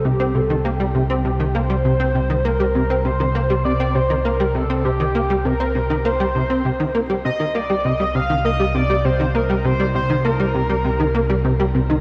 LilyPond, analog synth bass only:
\new Staff \with { instrumentName = "Analog synth bass" } { \clef bass \time 4/4 \key c \dorian \tempo 4 = 100 c16 c'16 c16 ees16 bes16 g16 c16 c'16 c16 ees16 bes16 g16 c16 c'16 c16 ees16 | bes16 g16 c16 c'16 c16 ees16 bes16 g16 c16 c'16 c16 ees16 bes16 g16 c16 c'16 | c16 ees16 bes16 g16 c16 c'16 c16 ees16 bes16 g16 c16 c'16 c16 ees16 bes16 g16 | c16 ees16 bes16 g16 c16 g16 c16 ees16 bes16 g16 c16 g16 c16 ees16 bes16 g16 |
c16 g16 c16 ees16 bes16 g16 c16 g16 c16 ees16 bes16 g16 c16 g16 c16 ees16 | }